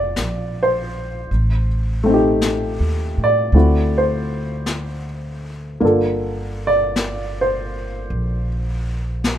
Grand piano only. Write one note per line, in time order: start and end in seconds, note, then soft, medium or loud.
0.00 1.27 A3 medium
0.00 1.29 C4 soft
0.00 1.31 D4 soft
0.00 1.30 E4 medium
0.00 0.54 D5 medium
0.63 1.67 C5 medium
2.03 3.53 A3 soft
2.03 3.53 C4 soft
2.10 3.56 D#4 soft
2.10 3.58 G4 soft
3.24 3.91 D5 medium
3.54 5.82 A3 soft
3.54 5.82 C4 soft
3.54 5.82 E4 soft
3.54 5.83 F#4 soft
3.98 5.05 C5 medium
5.80 9.38 D3 soft
5.80 9.38 A#3 soft
5.80 9.38 F4 soft
5.85 9.38 A4 soft
6.67 7.34 D5 medium
7.41 8.48 C5 medium